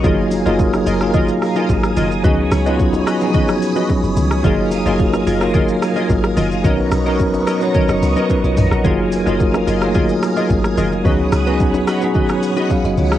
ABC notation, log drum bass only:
X:1
M:4/4
L:1/16
Q:1/4=109
K:F#
V:1 name="Log drum bass" clef=bass
F,,,3 F,,,3 F,,,4 z2 G,,,2 F,,,2 | C,,2 C,,4 z6 z F,,, C,,2 | F,,,3 F,,,3 F,,,4 z2 G,,,2 F,,,2 | B,,,2 B,,,4 z3 F,,, C,, z2 B,,, A,,, A,,, |
F,,,3 F,,,3 F,,,4 z2 G,,,2 F,,,2 | C,,2 C,,4 z6 z F,,, C,,2 |]